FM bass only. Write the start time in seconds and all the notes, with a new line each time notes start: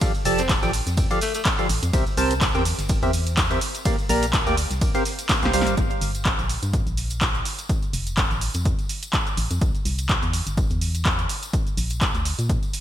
0.25 F1
0.63 A1
0.87 F2
1.69 A1
1.83 F2
1.93 C2
2.17 C2
2.55 E2
2.79 G1
3.03 E2
4.09 A#1
4.47 D2
4.71 C2
5.43 C2
5.53 C2
5.67 G1
5.77 G1
6.01 G1
6.39 A#1
6.63 G2
6.87 A#1
7.93 F1
8.31 A1
8.55 F2
9.37 A1
9.51 F2
9.61 C2
9.85 C2
10.23 E2
10.47 G1
10.71 E2
11.77 A#1
12.15 D2
12.39 A#2